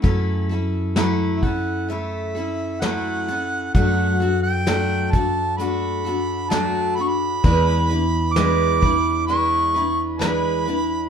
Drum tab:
HH |xxxxxxxx|xxxxxxxx|xxxxxxxx|
SD |--o---o-|--o---o-|--o---o-|
BD |o--o----|o--o----|o--o----|